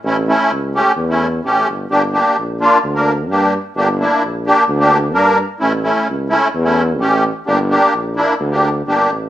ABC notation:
X:1
M:4/4
L:1/16
Q:1/4=129
K:none
V:1 name="Accordion"
[A,^CE] z [A,CE]2 z2 [A,CG]2 z [A,CE] z2 [A,CG]2 z2 | [_B,DG] z [B,DG]2 z2 [B,DF]2 z [B,D_B] z2 [B,DG]2 z2 | [_B,DG] z [B,DE]2 z2 [B,DG]2 z [B,DG] z2 [B,D_B]2 z2 | [A,^CE] z [A,CE]2 z2 [A,CE]2 z [A,CE] z2 [A,CG]2 z2 |
[_B,DG] z [B,DG]2 z2 [B,DE]2 z [B,DG] z2 [B,DG]2 z2 |]
V:2 name="Tuba" clef=bass
A,,,4 ^C,,4 E,,4 A,,,2 G,,,2 | G,,,4 _B,,,4 D,,4 G,,4 | G,,,4 _B,,,4 D,,4 G,,4 | A,,,4 ^C,,4 E,,4 A,,,4 |
G,,,4 _B,,,4 D,,4 G,,,2 A,,,2 |]